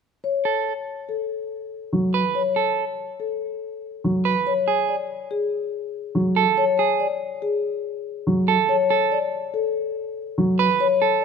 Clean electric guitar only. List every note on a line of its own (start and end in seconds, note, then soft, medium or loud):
0.45 0.73 A4 soft
2.14 2.42 B4 medium
2.56 2.84 A4 soft
4.25 4.53 B4 medium
4.68 4.95 G#4 soft
6.36 6.64 A4 medium
6.79 7.06 G#4 medium
8.48 8.75 A4 medium
8.90 9.18 A4 medium
10.59 10.87 B4 medium
11.02 11.25 A4 medium